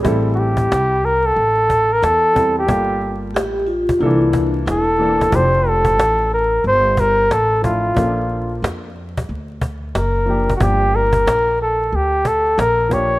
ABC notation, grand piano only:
X:1
M:4/4
L:1/8
Q:"Swing 16ths" 1/4=91
K:F
V:1 name="Grand piano"
[G,CEA]3 z4 [G,CEA] | [G,B,FA]3 z [D,E,B,DA]2 z [E,B,DA] | [F,A,DG]3 z4 [F,A,DE] | [F,B,_D=DA]3 z4 [F,B,DG] |
[F,B,DG]3 z4 [F,B,DG] |]